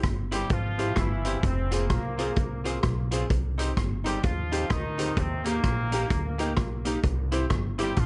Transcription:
0.03 upright bass G1, kick, cross-stick, closed hi-hat
0.31 horn section G3 G4, upright piano C4 E4 G4, hollow-body jazz guitar E4 G4 C5, closed hi-hat
0.50 upright bass G#1, horn section F3 F4, kick, closed hi-hat
0.78 upright piano C4 E4 G4, hollow-body jazz guitar E4 G4 C5, closed hi-hat
0.96 upright bass G1, horn section E3 E4, upright piano E4 G4, kick, cross-stick, closed hi-hat
1.25 upright piano C4 E4 G4, hollow-body jazz guitar E4 G4 C5, closed hi-hat
1.43 upright bass F1, horn section C4, kick, closed hi-hat
1.71 horn section A#3, upright piano C4 F4 G#4, hollow-body jazz guitar F4 G#4 C5, closed hi-hat
1.90 upright bass C2, kick, cross-stick, closed hi-hat
2.18 upright piano C4 F4 G#4, hollow-body jazz guitar F4 G#4 C5, closed hi-hat
2.36 upright bass C2, kick, closed hi-hat
2.64 upright piano C4 F4 G#4, hollow-body jazz guitar F4 G#4 C5, closed hi-hat
2.83 upright bass B1, upright piano F4 G#4, kick, cross-stick, closed hi-hat
3.11 upright piano C4 F4 G#4, hollow-body jazz guitar F4 G#4 C5, closed hi-hat
3.30 upright bass C2, kick, closed hi-hat
3.58 upright piano C4 D#4 G4, hollow-body jazz guitar D#4 G4 C5, closed hi-hat
3.77 upright bass G1, kick, cross-stick, closed hi-hat
4.04 horn section G3 G4, upright piano C4 D#4 G4, hollow-body jazz guitar D#4 G4 C5, closed hi-hat
4.23 upright bass D#2, horn section F3 F4, kick, closed hi-hat
4.52 upright piano C4 D#4 G4, hollow-body jazz guitar D#4 G4 C5, closed hi-hat
4.70 upright bass D2, horn section D#3 D#4, kick, cross-stick, closed hi-hat
4.98 upright piano C4 D#4 G4, hollow-body jazz guitar D#4 G4 C5, closed hi-hat
5.17 upright bass D#2, horn section C3 C4, kick, closed hi-hat
5.44 hollow-body jazz guitar A#3 D#4 G4, upright piano A#3 D#4 G4, horn section A#3, closed hi-hat
5.64 upright bass A#1, kick, cross-stick, closed hi-hat
5.92 upright piano A#3 D#4 G4, hollow-body jazz guitar A#3 D#4 G4, closed hi-hat
6.10 upright bass D2, kick, closed hi-hat
6.38 upright piano A#3 D#4 G4, hollow-body jazz guitar A#3 D#4 G4, closed hi-hat
6.57 upright bass B1, upright piano D#4 G4, kick, cross-stick, closed hi-hat
6.85 upright piano A#3 D#4 G4, hollow-body jazz guitar A#3 D#4 G4, closed hi-hat
7.03 upright bass C2, kick, closed hi-hat
7.32 upright piano C4 E4 G4, hollow-body jazz guitar E4 G4 C5, closed hi-hat
7.50 upright bass G1, kick, cross-stick, closed hi-hat
7.78 horn section G3 G4, upright piano C4 E4 G4, hollow-body jazz guitar E4 G4 C5, closed hi-hat
7.96 upright bass A#1, horn section F3 F4, kick, closed hi-hat

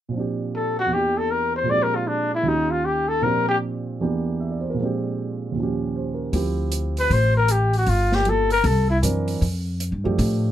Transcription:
0.09 grand piano A#2 F3
0.14 grand piano C4 D4
0.20 grand piano G4
0.55 trumpet A4
0.79 trumpet F#4
0.86 grand piano E2 E3
0.91 grand piano A#3 D4, trumpet G4
0.97 grand piano G4
1.17 trumpet A4
1.31 trumpet A#4
1.56 trumpet C5
1.63 grand piano A#2 F3 G#3
1.69 grand piano C4 D4, trumpet D5
1.74 grand piano G4
1.83 trumpet A#4
1.95 trumpet F4
2.08 trumpet D4
2.35 trumpet E4
2.43 grand piano D#2 D#3 C#4 F4
2.48 trumpet D#4, grand piano G4
2.71 trumpet F4
2.85 trumpet G4
3.08 trumpet A4
3.21 grand piano A#2 F3 C4 D4, trumpet A#4
3.26 grand piano G4
3.48 trumpet G4
4.01 grand piano E2 E3 A#3 D4 G4
4.40 grand piano E5
4.50 grand piano D5
4.61 grand piano C5
4.70 grand piano A#4
4.74 grand piano A#2 F3 G#3
4.80 grand piano C4 D4
4.85 grand piano G4
5.52 grand piano D#2 A#2
5.57 grand piano F3 C#4
5.63 grand piano G4
5.96 grand piano C5
6.14 grand piano A#4
6.33 upright bass D2, grand piano F3 C4 E4 G4, kick, open hi-hat
6.72 closed hi-hat
6.97 trumpet B4, open hi-hat
7.10 upright bass A1, trumpet C5, kick, open hi-hat
7.37 trumpet A#4
7.48 trumpet G4, closed hi-hat
7.73 trumpet F#4, open hi-hat
7.86 upright bass G1, trumpet F4, kick, open hi-hat
8.12 trumpet G4, snare
8.25 grand piano G3 A#3 F4 A4, closed hi-hat
8.29 trumpet A4
8.50 trumpet A#4, open hi-hat
8.64 upright bass C2, trumpet A4, kick, open hi-hat
8.90 trumpet E4
9.02 upright bass F#2, grand piano E3 C4 D4 A#4, closed hi-hat
9.28 open hi-hat
9.41 upright bass F2, kick, open hi-hat
9.80 closed hi-hat
9.92 upright bass G2
10.04 upright bass F#2, grand piano F3 A3 D4 G4
10.18 upright bass A2, kick, open hi-hat

